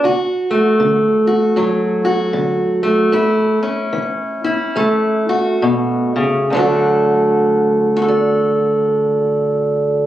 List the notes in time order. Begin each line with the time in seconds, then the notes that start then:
0.04 D2 F#4
0.51 A3
0.80 D3
1.27 F#4
1.56 A2 F#3
2.05 F#4
2.33 D3
2.83 A3
3.12 A2 E4
3.63 C#4
3.93 E3
4.44 E4
4.76 E2 A3
5.29 F#4
5.62 B2
6.16 C#3
6.50 D2 D3
6.55 F#3 A3
6.59 F#4
7.97 F#4
8.02 A4
8.08 D5